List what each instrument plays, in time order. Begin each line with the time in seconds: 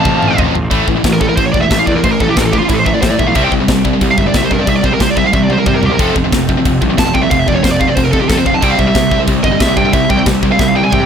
Already playing: distorted electric guitar F2 C3 F3, pipe organ A3 F4 C5 F5, lead electric guitar F5 A5
0.05 picked electric bass A1, kick, mid tom
0.22 picked electric bass A1, mid tom
0.37 picked electric bass A1, distorted electric guitar F2 C3 F3, kick, floor tom
0.55 picked electric bass A1, floor tom
0.70 picked electric bass A1, distorted electric guitar A2 E3 A3, kick, crash
0.88 picked electric bass A1, distorted electric guitar A2 E3, kick
0.96 distorted electric guitar A2 E3
1.04 picked electric bass A1, distorted electric guitar A2 E3, kick, snare, crash
1.13 lead electric guitar A#4
1.21 distorted electric guitar A2 E3, lead electric guitar A4, kick
1.29 distorted electric guitar A2 E3, lead electric guitar A#4
1.37 picked electric bass A1, distorted electric guitar A2 E3, lead electric guitar C5, kick, crash
1.46 lead electric guitar C#5
1.53 picked electric bass E1, distorted electric guitar A2 E3, lead electric guitar D5, kick
1.61 distorted electric guitar A2 E3, lead electric guitar E5
1.70 picked electric bass A1, distorted electric guitar A2 E3, lead electric guitar E5, kick, snare, crash
1.78 distorted electric guitar A2 E3, lead electric guitar F5
1.87 picked electric bass E2, distorted electric guitar A2 E3, lead electric guitar D5, kick
1.95 distorted electric guitar A2 E3, lead electric guitar A#4
2.03 picked electric bass A1, distorted electric guitar A2 E3, lead electric guitar C5, kick, crash
2.12 lead electric guitar A#4
2.20 picked electric bass A1, distorted electric guitar A2 E3, lead electric guitar A4, kick
2.28 distorted electric guitar A2 E3, lead electric guitar G4
2.36 picked electric bass A1, distorted electric guitar A2 E3, lead electric guitar A4, kick, snare, crash
2.42 lead electric guitar A#4
2.46 lead electric guitar A4
2.52 distorted electric guitar A2 E3, lead electric guitar G4, kick
2.59 distorted electric guitar A2 E3, lead electric guitar F4
2.69 picked electric bass A1, distorted electric guitar A2 E3, lead electric guitar E4, kick, crash
2.73 lead electric guitar A4
2.79 lead electric guitar C5
2.85 distorted electric guitar A2 E3, lead electric guitar E5, kick
2.94 distorted electric guitar A2 E3, lead electric guitar D5
3.01 distorted electric guitar A2 E3, picked electric bass A2, lead electric guitar C5, kick, snare, crash
3.10 distorted electric guitar A2 E3, lead electric guitar D5
3.19 picked electric bass B1, distorted electric guitar A2 E3, lead electric guitar E5, kick
3.27 distorted electric guitar A2 E3, lead electric guitar F5
3.35 picked electric bass C2, distorted electric guitar C3 G3 C4, lead electric guitar E5, kick, crash
3.44 lead electric guitar G5
3.52 picked electric bass C2, distorted electric guitar C3 G3, kick
3.61 distorted electric guitar C3 G3
3.68 picked electric bass C2, distorted electric guitar C3 G3, kick, snare, crash
3.85 distorted electric guitar C3 G3, kick
3.93 distorted electric guitar C3 G3
4.01 picked electric bass C2, distorted electric guitar C3 G3, kick, crash
4.11 lead electric guitar F5
4.18 picked electric bass G1, distorted electric guitar C3 G3, lead electric guitar E5, kick
4.26 distorted electric guitar C3 G3, lead electric guitar D5
4.34 picked electric bass C2, distorted electric guitar C3 G3, lead electric guitar E5, kick, snare, crash
4.43 distorted electric guitar C3 G3, lead electric guitar C5
4.51 picked electric bass G2, distorted electric guitar C3 G3, lead electric guitar A#4, kick
4.59 distorted electric guitar C3 G3, lead electric guitar D5
4.67 picked electric bass C2, distorted electric guitar C3 G3, lead electric guitar E5, kick, crash
4.77 lead electric guitar D5
4.84 picked electric bass C2, distorted electric guitar C3 G3, lead electric guitar C5, kick
4.93 distorted electric guitar C3 G3, lead electric guitar A#4
5.00 picked electric bass C2, distorted electric guitar C3 G3, lead electric guitar C5, kick, snare, crash
5.10 lead electric guitar D5
5.17 distorted electric guitar C3 G3, lead electric guitar E5, kick
5.24 distorted electric guitar C3 G3, lead electric guitar F5
5.33 picked electric bass C2, distorted electric guitar C3 G3, lead electric guitar E5, kick, high tom
5.44 lead electric guitar D5
5.50 distorted electric guitar C3 G3, lead electric guitar C5, mid tom
5.58 distorted electric guitar C3 G3, lead electric guitar A#4
5.66 distorted electric guitar C3 G3, picked electric bass C3, lead electric guitar C5, kick, mid tom
5.74 distorted electric guitar C3 G3, lead electric guitar A#4
5.82 picked electric bass C2, distorted electric guitar C3 G3, lead electric guitar G4, floor tom
5.90 distorted electric guitar C3 G3, lead electric guitar A#4
5.98 picked electric bass F1, distorted electric guitar F2 C3 F3, pipe organ A3 C4 F4 C5, lead electric guitar A4, kick, crash
6.15 picked electric bass F1, distorted electric guitar F2 C3, kick
6.24 distorted electric guitar F2 C3
6.32 picked electric bass F1, distorted electric guitar F2 C3, kick, snare, crash
6.49 distorted electric guitar F2 C3, kick
6.57 distorted electric guitar F2 C3
6.65 picked electric bass F1, distorted electric guitar F2 C3, kick, crash
6.81 picked electric bass C2, distorted electric guitar F2 C3, kick
6.90 distorted electric guitar F2 C3
6.97 picked electric bass F1, distorted electric guitar F2 C3, lead electric guitar A5, kick, snare, crash
7.06 distorted electric guitar F2 C3
7.14 picked electric bass C2, distorted electric guitar F2 C3, lead electric guitar G5, kick
7.23 distorted electric guitar F2 C3, lead electric guitar E5
7.31 picked electric bass F1, distorted electric guitar F2 C3, lead electric guitar F5, kick, crash
7.39 lead electric guitar E5
7.47 picked electric bass F1, distorted electric guitar F2 C3, lead electric guitar D5, kick
7.55 distorted electric guitar F2 C3, lead electric guitar C#5
7.64 picked electric bass F1, distorted electric guitar F2 C3, lead electric guitar C5, kick, snare, crash
7.72 lead electric guitar D5
7.80 distorted electric guitar F2 C3, lead electric guitar F5, kick
7.87 distorted electric guitar F2 C3, lead electric guitar D5
7.95 picked electric bass F1, distorted electric guitar F2 C3, lead electric guitar C5, kick, crash
8.04 lead electric guitar A#4
8.12 distorted electric guitar F2 C3, lead electric guitar A4, kick
8.21 distorted electric guitar F2 C3, lead electric guitar G4
8.29 distorted electric guitar F2 C3, picked electric bass F2, lead electric guitar A4, kick, snare, crash
8.37 distorted electric guitar F2 C3, lead electric guitar C5
8.46 picked electric bass F1, distorted electric guitar F2 C3, lead electric guitar F5, kick
8.53 distorted electric guitar F2 C3, lead electric guitar A5
8.61 picked electric bass C2, distorted electric guitar C3 G3 C4, pipe organ G3 C4 E4, lead electric guitar G5, kick, crash
8.71 lead electric guitar F5
8.78 picked electric bass C2, distorted electric guitar C3 G3, lead electric guitar E5, kick
8.87 distorted electric guitar C3 G3, lead electric guitar E5
8.95 picked electric bass C2, distorted electric guitar C3 G3, kick, snare, crash
9.11 distorted electric guitar C3 G3, kick
9.20 distorted electric guitar C3 G3
9.27 picked electric bass C2, distorted electric guitar C3 G3, kick, crash
9.43 picked electric bass G1, distorted electric guitar C3 G3, lead electric guitar D#5, kick
9.52 distorted electric guitar C3 G3
9.60 picked electric bass C2, distorted electric guitar C3 G3, lead electric guitar E5, kick, snare, crash
9.68 distorted electric guitar C3 G3
9.77 picked electric bass G2, distorted electric guitar C3 G3, lead electric guitar G5, kick
9.84 distorted electric guitar C3 G3
9.93 picked electric bass C2, distorted electric guitar C3 G3, lead electric guitar E5, kick, crash
10.10 picked electric bass C2, distorted electric guitar C3 G3, lead electric guitar G5, kick
10.17 distorted electric guitar C3 G3
10.26 picked electric bass C2, distorted electric guitar C3 G3, kick, snare, crash
10.43 distorted electric guitar C3 G3, kick
10.51 distorted electric guitar C3 G3, lead electric guitar F5
10.59 picked electric bass C2, distorted electric guitar C3 G3, lead electric guitar E5, kick, snare
10.69 lead electric guitar F5
10.75 distorted electric guitar C3 G3, lead electric guitar G5
10.83 distorted electric guitar C3 G3, lead electric guitar G#5
10.91 distorted electric guitar C3 G3, picked electric bass C3, lead electric guitar G5, kick, mid tom
11.00 distorted electric guitar C3 G3